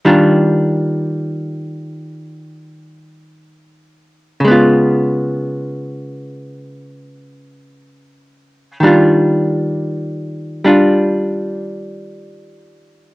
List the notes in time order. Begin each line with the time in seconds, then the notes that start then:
0.05 D#3 G3 D4 F4
4.40 C#3
4.45 G#3 B3
4.51 F4
8.80 D#3 G3 D4
8.86 F4
10.64 G3 D4 F4